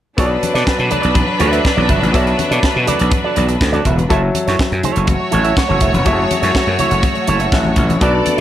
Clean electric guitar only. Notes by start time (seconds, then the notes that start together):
0.18 F#4 A4 D5
0.31 muted clean electric guitar stroke
0.42 muted clean electric guitar stroke
0.54 F#4 A4 D5
0.78 muted clean electric guitar stroke
0.90 F#4 A4 D5
1.02 F#4 A4 D5
1.15 muted clean electric guitar stroke
1.28 muted clean electric guitar stroke
1.39 F#4 A4 D5
1.52 F#4 A4 E5
1.64 muted clean electric guitar stroke
1.77 F#4 A4 D5
1.89 F#4 A4 E5
2.01 muted clean electric guitar stroke
2.13 F#4 A4 D5
2.26 muted clean electric guitar stroke
2.37 muted clean electric guitar stroke
2.50 F#4 A4 D5
2.63 muted clean electric guitar stroke
2.74 muted clean electric guitar stroke
2.87 F#4 A4 D5
3.00 F#4 A4 D5
3.12 muted clean electric guitar stroke
3.24 F#4 A4 D5
3.37 F#4 A4 D5
3.48 muted clean electric guitar stroke
3.61 muted clean electric guitar stroke
3.72 F#4 A4 D5
3.85 F#4 A4 E5
3.97 muted clean electric guitar stroke
4.10 E4 A4 C#5
4.23 muted clean electric guitar stroke
4.35 muted clean electric guitar stroke
4.47 E4 A4 C#5
4.60 muted clean electric guitar stroke
4.72 muted clean electric guitar stroke
4.83 E4 A4 C#5
4.96 E4 A4 C#5
5.20 muted clean electric guitar stroke
5.31 E4 A4 C#5
5.44 E4 A4 E5
5.57 muted clean electric guitar stroke
5.68 E4 A4 C#5
5.81 E4 A4 E5
5.93 muted clean electric guitar stroke
6.05 E4 A4 C#5
6.18 muted clean electric guitar stroke
6.31 muted clean electric guitar stroke
6.42 E4 A4 C#5
6.67 muted clean electric guitar stroke
6.79 E4 A4 C#5
6.91 E4 A4 C#5
7.03 muted clean electric guitar stroke
7.15 muted clean electric guitar stroke
7.27 E4 A4 C#5
7.41 E4 A4 E5
7.54 muted clean electric guitar stroke
7.66 muted clean electric guitar stroke
7.90 muted clean electric guitar stroke
8.02 F#4 A4 D5
8.14 muted clean electric guitar stroke
8.26 muted clean electric guitar stroke